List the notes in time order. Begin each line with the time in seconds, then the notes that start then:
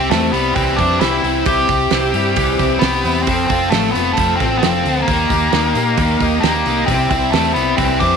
Already playing: C3 C4 E4 G4
0.10 E2 C3 G3 A3 C4 E4 G4, snare, open hi-hat
0.32 C2 G3 B3 C4 E4 G4, open hi-hat
0.55 C2 E3 G3 C4 E4 G4, kick, open hi-hat
0.76 F2 C4 D4 E4 G4, kick, open hi-hat
1.00 C2 C3 G3 C4 E4 G4, snare, open hi-hat
1.23 C2 C4 E4 G4, open hi-hat
1.46 C2 C3 G3 C4 E4 G4, kick, open hi-hat
1.68 C2 C4 E4 G4, kick, open hi-hat
1.90 C2 C3 G3 C4 E4 G4, snare, open hi-hat
2.14 G2 G3 C4 E4 G4, open hi-hat
2.36 C2 E3 G3 C4 E4 G4, kick, open hi-hat
2.59 C2 C4 E4 G4, kick, open hi-hat
2.79 C2 C3 G3 B3 C4 E4 G4, snare, open hi-hat
3.04 E2 C4 E4 G4, open hi-hat
3.23 C4
3.27 F1 F2 F3 C4 F4 A4, kick, open hi-hat
3.47 F1 C4 F4 A4, kick, open hi-hat
3.52 C4
3.70 A1 F3 A3 C4 F4, snare, open hi-hat
3.75 A4
3.92 F1 A3 B3 A4, open hi-hat
3.96 C4 F4
4.13 A3, open hi-hat
4.17 F1 F3 C4 F4 A4, kick
4.36 A1 C4, kick, open hi-hat
4.41 C4 F4 A4
4.58 F1 C4
4.63 F3 C4 F4 A4, snare, open hi-hat
4.85 D2 F4 A4, open hi-hat
4.89 C4
5.02 A#3
5.07 D#2 D#3 G3 A#3 D#4 G4, kick, open hi-hat
5.29 D#2 A#3 D#4 G4, kick, open hi-hat
5.53 D#2 D#3 G3 A#3 D#4 G4, snare, open hi-hat
5.75 A#2 D#4 G4, open hi-hat
5.79 A#3
5.97 D#2 D#3 G3 A#3 D#4 G4, kick, open hi-hat
6.20 D#2 D#4 G4, kick, open hi-hat
6.25 A#3
6.40 D#2 D#3 G3 A#3, snare, open hi-hat
6.45 A#3 D#4 G4
6.66 C2 A#3 D#4 G4, open hi-hat
6.86 C2 C3 C4, kick, open hi-hat
6.91 G3 C4 E4 G4
7.10 C2 C4 E4 G4, kick, open hi-hat
7.15 C4
7.32 E2 C3 G3 A3 C4, snare, open hi-hat
7.36 E4 G4
7.54 C2 G3 B3 G4, open hi-hat
7.58 C4 E4
7.77 C2 E3 G3 C4 E4 G4, kick, open hi-hat
8.00 F2 C4 D4 E4 G4, kick, open hi-hat